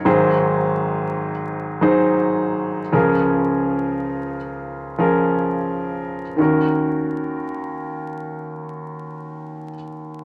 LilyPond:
<<
  \new Staff \with { instrumentName = "Grand piano" } { \time 4/4 \key ees \dorian \tempo 4 = 70 <ges ees' aes' c''>4.~ <ges ees' aes' c''>16 r8. <ges ees' aes' c''>4. | <f des' aes' bes'>4.~ <f des' aes' bes'>16 r8. <f des' aes' bes'>4. | <ees des' ges' bes'>1 | }
  \new Staff \with { instrumentName = "Grand piano" } { \clef bass \time 4/4 \key ees \dorian <aes,, aes,>1 | <des, des>1 | ees,1 | }
>>